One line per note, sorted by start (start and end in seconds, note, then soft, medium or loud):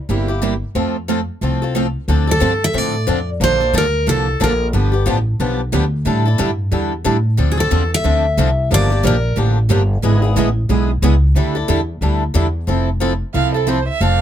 0.09 0.62 G1 medium
0.09 0.28 C3 medium
0.09 0.28 G3 medium
0.09 0.28 A#3 medium
0.09 0.28 E4 medium
0.09 0.27 G4 medium
0.28 0.42 A#3 soft
0.28 0.42 E4 medium
0.28 0.41 G4 medium
0.42 0.53 C3 medium
0.42 0.53 G3 medium
0.42 0.53 A#3 medium
0.42 0.53 E4 medium
0.42 0.54 G4 medium
0.75 1.28 F2 medium
0.75 0.95 F3 medium
0.75 0.95 A3 medium
0.75 0.95 C4 medium
0.75 0.96 F4 medium
0.75 0.96 A4 medium
1.08 1.19 F3 medium
1.08 1.19 A3 medium
1.08 1.20 C4 medium
1.08 1.20 F4 medium
1.08 1.20 A4 medium
1.41 1.95 C2 medium
1.41 1.61 F3 medium
1.41 1.62 A3 medium
1.41 1.61 C4 medium
1.41 1.61 F4 medium
1.41 1.61 A4 medium
1.62 1.74 C4 soft
1.62 1.75 F4 medium
1.62 1.75 A4 medium
1.75 1.86 F3 medium
1.75 1.86 A3 medium
1.75 1.86 C4 medium
1.75 1.86 F4 medium
1.75 1.86 A4 medium
2.08 2.40 D2 medium
2.08 2.27 D3 medium
2.08 2.27 F3 medium
2.08 2.28 C4 medium
2.08 2.27 D4 medium
2.08 2.26 A4 medium
2.27 2.39 C4 medium
2.27 2.40 D4 soft
2.27 2.40 A4 medium
2.27 2.64 A4 medium
2.40 2.73 G2 medium
2.40 2.51 D3 medium
2.40 2.52 F3 loud
2.40 2.52 C4 medium
2.40 2.52 D4 medium
2.40 2.52 A4 loud
2.64 2.78 E5 loud
2.73 3.06 A2 medium
2.73 2.94 D3 medium
2.73 2.94 F3 medium
2.73 2.94 C4 medium
2.73 2.94 D4 medium
2.73 2.95 A4 medium
2.78 3.29 D5 medium
3.07 3.39 F2 medium
3.07 3.18 D3 medium
3.07 3.18 F3 medium
3.07 3.18 C4 medium
3.07 3.18 D4 loud
3.07 3.19 A4 medium
3.40 3.72 A#1 medium
3.40 3.60 D3 medium
3.40 3.60 F3 medium
3.40 3.60 A#3 medium
3.40 3.60 D4 medium
3.40 3.59 A4 medium
3.40 3.73 C5 medium
3.60 3.73 A#3 soft
3.60 3.74 D4 soft
3.60 3.73 A4 medium
3.73 4.06 D2 medium
3.73 3.84 D3 medium
3.73 3.85 F3 medium
3.73 3.85 A#3 medium
3.73 3.85 D4 medium
3.73 3.85 A4 loud
3.78 4.09 A#4 medium
4.07 4.39 C2 medium
4.07 4.27 D3 medium
4.07 4.27 F3 medium
4.07 4.27 A#3 medium
4.07 4.27 D4 medium
4.07 4.27 A4 medium
4.07 4.42 A4 medium
4.40 4.72 A#1 medium
4.40 4.51 D3 medium
4.40 4.51 F3 medium
4.40 4.51 A#3 loud
4.40 4.51 D4 loud
4.40 4.51 A4 loud
4.40 4.67 A#4 medium
4.73 5.05 G1 medium
4.73 4.92 D3 medium
4.73 4.92 F3 medium
4.73 4.92 B3 medium
4.73 4.92 D4 medium
4.73 4.91 G4 medium
4.92 5.05 B3 soft
4.92 5.06 D4 medium
4.92 5.05 G4 medium
5.06 5.39 A1 medium
5.06 5.17 D3 medium
5.06 5.17 F3 medium
5.06 5.17 B3 medium
5.06 5.17 D4 medium
5.06 5.17 G4 medium
5.40 5.72 B1 medium
5.40 5.60 D3 medium
5.40 5.60 F3 medium
5.40 5.60 B3 medium
5.40 5.60 D4 medium
5.40 5.60 G4 medium
5.72 6.05 D2 medium
5.72 5.83 D3 medium
5.72 5.83 F3 medium
5.72 5.84 B3 medium
5.72 5.84 D4 medium
5.72 5.84 G4 medium
6.05 6.38 A2 medium
6.05 6.25 D3 medium
6.05 6.25 G3 medium
6.05 6.25 D4 medium
6.05 6.25 E4 medium
6.05 6.24 A4 medium
6.26 6.38 D4 soft
6.26 6.38 E4 medium
6.26 6.38 A4 medium
6.38 6.71 G2 medium
6.38 6.49 D3 medium
6.38 6.50 G3 medium
6.38 6.50 D4 medium
6.38 6.50 E4 medium
6.38 6.50 A4 loud
6.71 7.04 E2 medium
6.71 6.92 D3 medium
6.71 6.92 G3 medium
6.71 6.92 D4 medium
6.71 6.92 E4 medium
6.71 6.93 A4 medium
7.04 7.37 A2 medium
7.04 7.16 D3 medium
7.04 7.16 G3 medium
7.04 7.16 D4 medium
7.04 7.16 E4 medium
7.04 7.16 A4 medium
7.37 7.70 D2 medium
7.37 7.57 D3 medium
7.37 7.57 F3 medium
7.37 7.57 C4 medium
7.37 7.57 D4 medium
7.37 7.56 A4 medium
7.52 7.59 G#4 medium
7.57 7.70 C4 soft
7.57 7.70 D4 medium
7.57 7.71 A4 medium
7.57 7.90 A4 medium
7.71 8.04 E2 medium
7.71 7.82 D3 medium
7.71 7.82 F3 medium
7.71 7.82 C4 medium
7.71 7.82 D4 medium
7.71 7.82 A4 loud
7.94 8.68 E5 medium
8.04 8.37 D2 medium
8.04 8.24 D3 medium
8.04 8.25 F3 medium
8.04 8.25 C4 medium
8.04 8.25 D4 medium
8.04 8.25 A4 medium
8.38 8.70 C2 medium
8.38 8.49 D3 medium
8.38 8.49 F3 medium
8.38 8.49 C4 loud
8.38 8.49 D4 medium
8.38 8.49 A4 medium
8.71 9.03 G1 medium
8.71 8.90 D3 medium
8.71 8.90 F3 medium
8.71 8.90 A#3 medium
8.71 8.91 D4 medium
8.71 8.89 G4 medium
8.71 9.03 D5 loud
8.90 9.03 A#3 medium
8.90 9.04 D4 medium
8.90 9.03 G4 medium
9.04 9.36 A#1 medium
9.04 9.15 D3 medium
9.04 9.15 F3 medium
9.04 9.15 A#3 medium
9.04 9.15 D4 medium
9.04 9.15 G4 medium
9.04 9.36 A#4 medium
9.37 9.69 A1 medium
9.37 9.57 D3 medium
9.37 9.57 F3 medium
9.37 9.57 A#3 medium
9.37 9.58 D4 medium
9.37 9.58 G4 medium
9.70 10.02 G1 loud
9.70 9.81 D3 medium
9.70 9.81 F3 medium
9.70 9.81 A#3 medium
9.70 9.81 D4 medium
9.70 9.82 G4 loud
10.03 10.35 G#1 medium
10.03 10.22 D3 medium
10.03 10.22 G#3 medium
10.03 10.22 B3 medium
10.03 10.23 E4 medium
10.03 10.21 G#4 medium
10.22 10.37 B3 soft
10.22 10.36 E4 medium
10.22 10.35 G#4 medium
10.36 10.69 A1 loud
10.36 10.47 D3 medium
10.36 10.48 G#3 loud
10.36 10.48 B3 medium
10.36 10.48 E4 medium
10.36 10.48 G#4 loud
10.69 11.02 B1 medium
10.69 10.90 D3 medium
10.69 10.90 G#3 medium
10.69 10.90 B3 medium
10.69 10.90 E4 medium
10.69 10.90 G#4 medium
11.02 11.34 C#2 loud
11.02 11.13 D3 medium
11.02 11.14 G#3 medium
11.02 11.14 B3 loud
11.02 11.14 E4 medium
11.02 11.14 G#4 loud
11.35 11.67 D2 medium
11.35 11.55 D3 medium
11.35 11.55 G3 medium
11.35 11.55 D4 medium
11.35 11.55 E4 medium
11.35 11.54 A4 medium
11.55 11.68 D4 soft
11.55 11.68 E4 medium
11.55 11.68 A4 medium
11.68 12.00 E2 medium
11.68 11.79 D3 medium
11.68 11.80 G3 medium
11.68 11.80 D4 medium
11.68 11.80 E4 medium
11.68 11.80 A4 loud
12.01 12.34 D2 medium
12.01 12.22 D3 medium
12.01 12.22 G3 medium
12.01 12.23 D4 medium
12.01 12.23 E4 medium
12.01 12.23 A4 medium
12.34 12.67 E2 medium
12.34 12.45 D3 medium
12.34 12.46 G3 medium
12.34 12.46 D4 medium
12.34 12.46 E4 loud
12.34 12.46 A4 loud
12.67 13.21 F1 medium
12.67 12.88 F3 medium
12.67 12.88 C4 medium
12.67 12.89 E4 medium
12.67 12.89 A4 medium
13.00 13.12 F3 medium
13.00 13.12 C4 medium
13.00 13.12 E4 medium
13.00 13.12 A4 medium
13.34 13.87 C2 medium
13.34 13.54 F3 medium
13.34 13.54 C4 medium
13.34 13.54 E4 medium
13.34 13.53 A4 medium
13.34 13.53 F5 medium
13.54 13.66 C4 soft
13.54 13.67 E4 medium
13.54 13.67 A4 medium
13.54 13.70 A4 medium
13.67 13.78 F3 medium
13.67 13.79 C4 medium
13.67 13.79 E4 medium
13.67 13.79 A4 medium
13.67 13.87 C5 medium
13.88 14.03 E5 medium
14.01 14.21 F1 medium
14.01 14.21 F3 medium
14.01 14.21 C4 medium
14.01 14.21 D4 medium
14.01 14.21 A4 medium
14.01 14.21 F5 medium